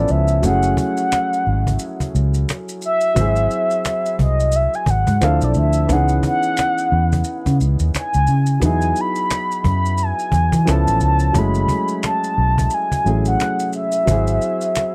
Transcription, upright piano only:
0.00 0.43 F3 medium
0.00 0.43 B3 medium
0.00 0.43 C#4 medium
0.00 0.44 E4 medium
0.00 0.45 A4 medium
0.42 3.11 F#3 medium
0.42 3.12 A3 medium
0.42 3.13 C#4 medium
0.46 3.13 E4 medium
0.46 3.14 G#4 medium
3.15 5.16 F#3 medium
3.15 5.17 C4 medium
3.15 5.17 F#4 medium
3.19 5.18 E4 soft
3.19 5.19 G#4 medium
5.21 5.89 F3 medium
5.21 5.89 C4 medium
5.21 5.90 D4 medium
5.21 5.90 E4 medium
5.21 5.90 A4 medium
5.87 8.57 E3 medium
5.87 8.57 B3 medium
5.87 8.58 C#4 medium
5.91 8.59 D#4 medium
5.91 8.60 G#4 medium
8.60 10.61 F#3 medium
8.60 10.62 B3 medium
8.60 10.63 D#4 medium
8.64 10.63 E4 medium
8.64 10.64 G#4 medium
10.65 11.34 F3 medium
10.65 11.34 B3 medium
10.65 11.34 C#4 medium
10.65 11.35 E4 medium
10.65 11.35 A4 medium
11.33 13.01 F#3 medium
11.33 13.01 A3 soft
11.33 13.02 C#4 soft
11.37 13.03 G#3 medium
11.37 13.03 E4 medium
13.04 14.04 F#3 soft
13.04 14.07 A3 soft
13.04 14.07 C#4 soft
13.04 14.08 E4 soft
13.04 14.08 G#4 medium
14.05 14.95 F#3 medium
14.05 14.95 C4 medium
14.05 14.95 F#4 medium
14.10 14.95 E4 medium
14.10 14.95 G#4 medium

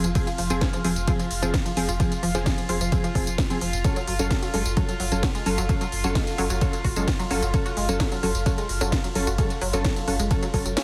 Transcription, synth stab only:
0.15 0.28 F3 medium
0.15 0.28 C4 medium
0.15 0.28 G#4 loud
0.50 0.82 F3 loud
0.50 0.82 C4 medium
0.50 0.82 G#4 loud
0.85 0.93 F3 medium
0.85 0.92 C4 medium
0.85 0.92 G#4 medium
1.08 1.20 F3 medium
1.08 1.20 C4 medium
1.08 1.20 G#4 loud
1.43 1.55 F3 medium
1.43 1.55 C4 medium
1.43 1.55 G#4 medium
1.77 1.90 F3 loud
1.77 1.90 C4 medium
1.77 1.90 G#4 loud
2.00 2.13 F3 medium
2.00 2.13 C4 medium
2.00 2.13 G#4 loud
2.35 2.66 F3 loud
2.35 2.66 C4 medium
2.35 2.66 G#4 loud
2.69 2.77 F3 medium
2.69 2.77 C4 medium
2.69 2.77 G#4 medium
2.92 3.05 F3 medium
2.92 3.05 C4 medium
2.92 3.05 G#4 loud
3.15 3.28 F3 medium
3.15 3.28 C4 medium
3.15 3.28 G#4 medium
3.50 3.58 F3 medium
3.50 3.58 C4 medium
3.50 3.58 G#4 medium
3.85 3.97 F#3 medium
3.85 3.97 C#4 medium
3.85 3.97 A4 loud
4.19 4.51 F#3 loud
4.19 4.51 C#4 loud
4.19 4.51 A4 loud
4.54 4.62 F#3 medium
4.54 4.62 C#4 medium
4.54 4.62 A4 medium
4.77 4.90 F#3 medium
4.77 4.90 C#4 medium
4.77 4.90 A4 loud
5.12 5.24 F#3 medium
5.12 5.24 C#4 medium
5.12 5.24 A4 medium
5.46 5.59 F#3 loud
5.46 5.59 C#4 medium
5.46 5.59 A4 loud
5.69 5.82 F#3 medium
5.69 5.82 C#4 medium
5.69 5.82 A4 loud
6.04 6.36 F#3 loud
6.04 6.36 C#4 medium
6.04 6.36 A4 loud
6.38 6.46 F#3 medium
6.38 6.46 C#4 medium
6.38 6.46 A4 medium
6.61 6.74 F#3 medium
6.61 6.74 C#4 medium
6.61 6.74 A4 loud
6.97 7.09 F#3 medium
6.97 7.09 C#4 medium
6.97 7.09 A4 medium
7.31 7.43 F#3 loud
7.31 7.43 C#4 medium
7.31 7.43 A4 loud
7.54 7.67 F#3 medium
7.54 7.67 C#4 medium
7.54 7.67 A4 loud
7.89 8.20 F#3 loud
7.89 8.20 C#4 medium
7.89 8.20 A4 loud
8.23 8.31 F#3 medium
8.23 8.31 C#4 medium
8.23 8.31 A4 medium
8.46 8.59 F#3 medium
8.46 8.59 C#4 medium
8.46 8.59 A4 loud
8.81 8.93 F#3 medium
8.81 8.93 C#4 medium
8.81 8.93 A4 medium
9.15 9.28 F#3 loud
9.15 9.28 C#4 medium
9.15 9.28 A4 loud
9.38 9.51 F#3 medium
9.38 9.51 C#4 medium
9.38 9.51 A4 loud
9.73 10.05 F#3 loud
9.73 10.05 C#4 medium
9.73 10.05 A4 loud
10.08 10.16 F#3 medium
10.08 10.16 C#4 medium
10.08 10.16 A4 medium
10.31 10.43 F#3 medium
10.31 10.43 C#4 medium
10.31 10.43 A4 loud
10.54 10.67 F#3 medium
10.54 10.66 C#4 medium
10.54 10.66 A4 medium

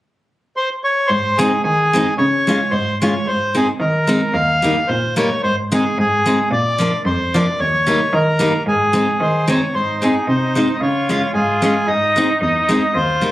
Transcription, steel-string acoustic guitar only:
1.39 1.51 G#3 medium
1.39 1.51 C4 soft
1.39 1.52 D#4 medium
1.93 2.05 G#3 soft
1.93 2.05 C4 soft
1.93 2.06 D#4 medium
2.47 2.59 G#3 medium
2.47 2.59 C#4 soft
2.47 2.60 F4 medium
3.02 3.13 G#3 medium
3.02 3.13 C#4 soft
3.02 3.14 F4 medium
3.55 3.66 G#3 medium
3.55 3.66 C4 soft
3.55 3.66 D#4 soft
4.07 4.20 G#3 medium
4.07 4.20 C4 soft
4.07 4.20 D#4 medium
4.62 4.74 G3 soft
4.62 4.75 A#3 soft
4.62 4.75 D#4 medium
5.16 5.28 G3 medium
5.16 5.29 A#3 soft
5.16 5.29 D#4 medium
5.72 5.83 G#3 medium
5.72 5.83 C4 soft
5.72 5.84 D#4 medium
6.26 6.37 G#3 soft
6.26 6.38 C4 soft
6.26 6.38 D#4 medium
6.78 6.91 F3 medium
6.78 6.92 A#3 soft
6.78 6.92 D4 medium
7.34 7.46 F3 medium
7.34 7.46 A#3 soft
7.34 7.46 D4 medium
7.87 7.99 G3 soft
7.87 7.99 A#3 soft
7.87 7.99 D#4 medium
8.39 8.52 G3 medium
8.39 8.52 A#3 medium
8.39 8.52 D#4 medium
8.93 9.05 G#3 medium
8.93 9.06 C4 soft
8.93 9.06 D#4 medium
9.47 9.59 G#3 medium
9.47 9.60 C4 medium
9.47 9.60 D#4 medium
10.02 10.13 G#3 soft
10.02 10.14 C4 soft
10.02 10.14 D#4 medium
10.55 10.67 G#3 soft
10.55 10.67 C4 soft
10.55 10.68 D#4 medium
11.09 11.21 G#3 soft
11.09 11.21 C#4 soft
11.09 11.21 F4 medium
11.62 11.74 G#3 soft
11.62 11.74 C#4 soft
11.62 11.75 F4 medium
12.16 12.27 G#3 soft
12.16 12.28 C4 soft
12.16 12.28 D#4 medium
12.69 12.81 G#3 medium
12.69 12.81 C4 soft
12.69 12.81 D#4 soft
13.21 13.32 G3 soft
13.21 13.32 A#3 soft
13.21 13.32 D#4 medium

